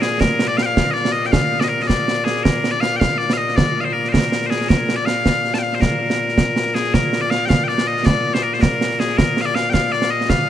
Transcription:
0.00 10.49 A#2 medium
0.00 0.20 G#4 loud
0.00 snare medium
0.11 snare soft
0.20 0.48 A#4 loud
0.20 concert bass drum medium
0.20 snare loud
0.39 snare medium
0.48 0.57 D5 loud
0.57 0.62 F5 loud
0.57 snare medium
0.62 0.75 F5 loud
0.62 0.66 G5 medium
0.75 0.91 F5 loud
0.75 concert bass drum medium
0.75 snare medium
0.91 1.12 D5 loud
0.91 0.94 D#5 medium
0.96 snare soft
1.05 snare medium
1.12 1.26 D#5 loud
1.24 1.32 G5 medium
1.24 snare soft
1.32 1.60 F5 loud
1.32 concert bass drum medium
1.32 snare loud
1.60 1.64 D5 loud
1.60 1.69 D#5 medium
1.60 snare medium
1.69 1.82 A#4 medium
1.80 1.87 D#5 medium
1.80 snare soft
1.87 2.25 D5 medium
1.87 concert bass drum medium
1.87 snare medium
2.08 snare medium
2.25 2.44 G#4 medium
2.25 snare medium
2.36 snare soft
2.44 2.71 A#4 medium
2.44 concert bass drum medium
2.44 snare loud
2.64 snare medium
2.71 2.81 D5 medium
2.81 2.96 F5 loud
2.81 snare medium
2.96 3.18 F5 loud
2.96 3.00 G5 loud
3.01 concert bass drum medium
3.01 snare loud
3.18 3.33 D5 medium
3.18 snare soft
3.30 3.37 F5 loud
3.30 snare medium
3.37 3.56 D#5 loud
3.49 snare soft
3.56 3.81 D5 medium
3.56 concert bass drum medium
3.56 snare loud
3.81 3.88 C5 medium
3.81 3.85 F5 medium
3.88 3.93 C5 medium
3.93 4.09 A#4 medium
4.05 snare soft
4.09 4.47 A#4 medium
4.09 4.13 C5 medium
4.14 concert bass drum medium
4.14 snare medium
4.32 snare medium
4.42 snare soft
4.47 4.69 G#4 medium
4.47 4.50 C5 medium
4.51 snare medium
4.61 snare soft
4.69 4.96 A#4 medium
4.69 concert bass drum medium
4.69 snare loud
4.89 snare medium
4.96 5.06 D5 medium
5.06 5.54 F5 loud
5.06 snare medium
5.26 concert bass drum soft
5.26 snare medium
5.45 snare soft
5.54 5.58 A5 medium
5.54 snare medium
5.58 5.63 G5 medium
5.63 5.75 F5 medium
5.73 5.81 C5 medium
5.73 snare soft
5.81 6.74 A#4 medium
5.81 concert bass drum medium
5.81 snare medium
6.10 snare medium
6.29 snare soft
6.38 concert bass drum soft
6.38 snare medium
6.56 snare medium
6.66 snare soft
6.74 6.94 G#4 loud
6.74 snare medium
6.85 snare soft
6.94 7.21 A#4 loud
6.94 concert bass drum medium
6.94 snare medium
7.13 snare medium
7.21 7.30 D5 loud
7.30 7.45 F5 loud
7.30 snare medium
7.45 7.64 F5 loud
7.45 7.49 G5 loud
7.50 concert bass drum soft
7.50 snare medium
7.64 7.68 G5 medium
7.68 7.88 D5 medium
7.68 snare soft
7.78 snare medium
7.88 8.06 D#5 loud
7.97 snare soft
8.06 8.34 D5 loud
8.06 concert bass drum medium
8.06 snare loud
8.34 8.43 C5 loud
8.34 snare medium
8.43 8.54 A#4 medium
8.53 8.61 C5 medium
8.53 snare soft
8.61 8.99 A#4 medium
8.61 concert bass drum medium
8.61 snare medium
8.81 snare medium
8.91 snare soft
8.99 9.17 G#4 medium
8.99 snare medium
9.09 snare soft
9.17 9.41 A#4 loud
9.17 concert bass drum medium
9.17 snare loud
9.37 snare medium
9.41 9.45 F5 loud
9.45 9.55 D5 loud
9.55 9.70 F5 loud
9.55 snare medium
9.70 9.92 F5 loud
9.70 9.73 G5 loud
9.74 concert bass drum soft
9.74 snare medium
9.92 10.11 D5 loud
9.92 snare soft
10.02 snare medium
10.11 10.30 D#5 medium
10.21 snare soft
10.30 10.49 F5 loud
10.30 concert bass drum medium
10.30 snare medium

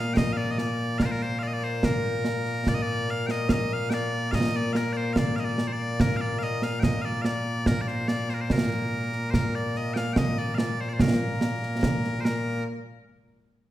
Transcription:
0.00 12.64 A#2 medium
0.00 12.64 A#3 medium
0.00 0.14 F5 loud
0.14 0.33 D#5 loud
0.14 0.17 G5 loud
0.14 concert bass drum medium
0.14 snare medium
0.33 0.37 F5 medium
0.37 0.51 D5 medium
0.51 0.59 D#5 medium
0.58 0.98 D5 medium
0.58 snare medium
0.98 1.05 A#4 loud
0.98 1.02 F5 loud
0.98 concert bass drum soft
0.98 snare medium
1.05 1.11 C5 medium
1.11 1.22 A#4 loud
1.21 1.39 C5 loud
1.21 snare soft
1.39 1.43 F5 medium
1.43 1.48 D5 medium
1.48 1.53 D#5 medium
1.53 1.64 D5 medium
1.63 1.85 C5 loud
1.63 snare soft
1.83 2.68 A#4 medium
1.83 concert bass drum medium
1.83 snare medium
2.25 snare medium
2.45 snare soft
2.67 2.75 D5 loud
2.67 concert bass drum soft
2.67 snare medium
2.75 2.82 D#5 medium
2.82 3.10 D5 loud
3.08 3.27 F5 medium
3.08 snare soft
3.27 3.31 G5 medium
3.27 snare medium
3.31 3.49 D#5 medium
3.49 3.73 D#5 medium
3.49 3.53 F5 medium
3.49 concert bass drum medium
3.49 snare medium
3.73 3.90 F5 loud
3.90 4.31 D5 loud
3.90 3.94 G5 loud
3.90 snare medium
4.31 4.56 D#5 loud
4.31 4.35 F5 loud
4.31 concert bass drum soft
4.31 snare medium
4.54 4.73 D5 loud
4.54 snare soft
4.73 4.93 A#4 medium
4.73 4.76 F5 medium
4.73 snare medium
4.93 4.97 D5 medium
4.97 5.13 C5 medium
5.13 5.18 F5 medium
5.13 concert bass drum medium
5.13 snare medium
5.18 5.36 D5 medium
5.36 5.45 D#5 medium
5.36 5.40 F5 medium
5.36 snare soft
5.45 5.67 D5 loud
5.58 snare medium
5.67 5.73 C5 medium
5.73 6.01 D5 medium
6.00 6.17 A#4 loud
6.00 concert bass drum medium
6.00 snare medium
6.17 6.21 F5 medium
6.21 6.39 D5 medium
6.39 6.43 F5 loud
6.39 snare soft
6.43 6.63 D#5 loud
6.62 6.80 F5 medium
6.62 snare medium
6.80 7.02 D#5 medium
6.80 6.84 G5 medium
6.80 concert bass drum medium
6.80 snare medium
7.02 7.22 D5 medium
7.02 7.05 F5 medium
7.22 7.67 D5 medium
7.22 7.25 F5 medium
7.22 snare medium
7.66 7.81 A#4 loud
7.66 concert bass drum medium
7.66 snare medium
7.81 7.88 D5 medium
7.88 8.08 C5 medium
7.88 snare soft
8.08 8.30 D5 medium
8.08 snare medium
8.29 8.34 C5 medium
8.29 snare soft
8.34 8.41 A#4 medium
8.41 8.52 C5 medium
8.50 9.30 A#4 medium
8.50 concert bass drum medium
8.50 snare medium
8.71 snare soft
9.13 snare soft
9.30 9.55 A#4 medium
9.30 9.34 C5 medium
9.30 concert bass drum medium
9.30 snare medium
9.55 9.77 D5 medium
9.75 9.94 D#5 medium
9.75 snare soft
9.94 10.13 F5 medium
9.94 9.97 G5 medium
9.94 snare medium
10.13 10.18 G5 loud
10.13 concert bass drum medium
10.13 snare loud
10.18 10.38 D#5 loud
10.38 10.55 D5 medium
10.55 10.81 D5 medium
10.55 10.58 F5 medium
10.55 snare medium
10.81 10.89 C5 medium
10.89 10.93 D5 medium
10.93 11.01 C5 medium
10.99 12.21 A#4 medium
10.99 concert bass drum medium
10.99 snare loud
11.41 snare medium
11.63 snare soft
11.83 concert bass drum medium
11.83 snare loud
12.04 snare soft
12.21 12.25 C5 medium
12.25 12.64 A#4 medium
12.25 snare medium

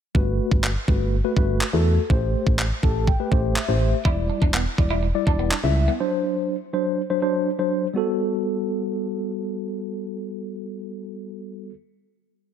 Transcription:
0.15 0.40 G1 loud
0.15 0.69 A3 medium
0.15 0.69 F#4 medium
0.15 0.69 B4 medium
0.15 kick loud
0.51 0.77 G1 medium
0.51 kick medium
0.64 clap loud
0.88 1.22 G1 medium
0.88 1.15 A3 medium
0.88 1.15 F#4 medium
0.88 1.15 B4 medium
0.88 kick loud
1.24 1.34 A3 medium
1.24 1.34 F#4 medium
1.24 1.34 B4 medium
1.37 1.62 G1 loud
1.37 1.64 A3 medium
1.37 1.64 F#4 medium
1.37 1.64 B4 medium
1.37 kick medium
1.61 clap loud
1.73 1.98 E2 medium
1.73 2.01 A3 medium
1.73 2.01 F#4 medium
1.73 2.01 A4 medium
2.10 2.35 A1 loud
2.10 2.64 A3 medium
2.10 2.64 G4 medium
2.10 2.65 C5 medium
2.10 kick loud
2.47 2.72 A1 medium
2.47 kick medium
2.59 clap loud
2.83 3.17 A1 medium
2.83 3.10 A3 medium
2.83 3.10 G4 medium
2.83 3.10 A4 medium
2.83 3.06 A5 medium
2.83 kick loud
3.07 3.53 G5 medium
3.07 kick medium
3.19 3.29 A3 medium
3.19 3.29 G4 medium
3.19 3.29 B4 medium
3.32 3.57 A1 loud
3.32 3.59 A3 medium
3.32 3.59 G4 medium
3.32 kick loud
3.56 4.02 E5 medium
3.56 clap loud
3.68 3.94 A1 medium
3.68 3.96 A3 medium
3.68 3.96 G4 medium
3.68 3.96 C5 medium
4.05 4.30 E1 loud
4.05 4.59 G3 medium
4.05 4.60 E4 medium
4.05 4.14 E4 medium
4.05 4.60 D5 medium
4.05 kick loud
4.30 muted clean electric guitar stroke soft
4.42 4.67 E1 medium
4.42 4.50 D4 medium
4.42 kick medium
4.54 4.62 B3 medium
4.54 clap loud
4.78 5.12 E1 medium
4.78 5.05 G3 medium
4.78 5.06 E4 medium
4.78 5.06 D5 medium
4.78 muted clean electric guitar stroke soft
4.78 kick medium
4.90 4.99 E4 medium
5.03 muted clean electric guitar stroke soft
5.15 5.24 G3 medium
5.15 5.24 E4 medium
5.15 5.24 D5 medium
5.27 5.52 E1 loud
5.27 5.54 G3 medium
5.27 5.36 D4 medium
5.27 5.54 E4 medium
5.27 5.54 D5 medium
5.27 kick medium
5.39 5.48 B3 medium
5.51 5.60 D4 medium
5.51 clap loud
5.63 5.89 C#2 medium
5.63 5.91 G3 medium
5.63 5.91 E4 medium
5.63 5.91 E5 medium
5.76 muted clean electric guitar stroke soft
5.88 5.96 B3 medium
6.00 6.55 F#3 medium
6.00 6.55 D4 medium
6.00 6.55 C5 medium
6.73 7.01 F#3 medium
6.73 7.01 D4 medium
6.73 7.01 C5 medium
7.10 7.19 F#3 medium
7.10 7.19 D4 medium
7.10 7.19 C5 medium
7.22 7.49 F#3 medium
7.22 7.49 D4 medium
7.22 7.50 C5 medium
7.59 7.86 F#3 medium
7.59 7.86 D4 medium
7.59 7.86 C5 medium
7.93 11.69 G3 medium
7.93 11.70 B3 medium
7.93 11.72 F#4 medium
7.93 11.73 A4 medium

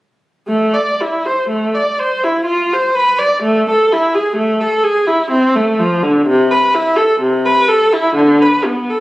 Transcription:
0.47 0.74 A3 medium
0.74 1.00 D5 medium
1.01 1.25 E4 soft
1.25 1.50 C5 soft
1.49 1.73 A3 medium
1.75 1.99 D5 medium
1.99 2.23 C5 medium
2.24 2.47 E4 medium
2.45 2.70 F4 medium
2.73 2.96 C5 medium
2.95 3.19 B4 medium
3.18 3.43 D5 medium
3.43 3.66 A3 medium
3.70 3.92 A4 medium
3.92 4.15 E4 medium
4.15 4.38 G#4 medium
4.36 4.60 A3 medium
4.61 4.85 A4 medium
4.84 5.08 G#4 medium
5.07 5.31 E4 medium
5.31 5.54 C4 medium
5.56 5.79 A3 medium
5.79 6.03 F3 medium
6.02 6.27 D3 medium
6.27 6.50 C3 loud
6.51 6.75 B4 medium
6.74 6.98 E4 medium
6.96 7.21 A4 medium
7.20 7.44 C3 medium
7.45 7.69 B4 medium
7.68 7.93 A4 medium
7.93 8.17 E4 medium
8.16 8.40 D3 medium
8.42 8.66 B4 medium
8.65 8.90 B3 medium
8.90 9.00 A4 medium

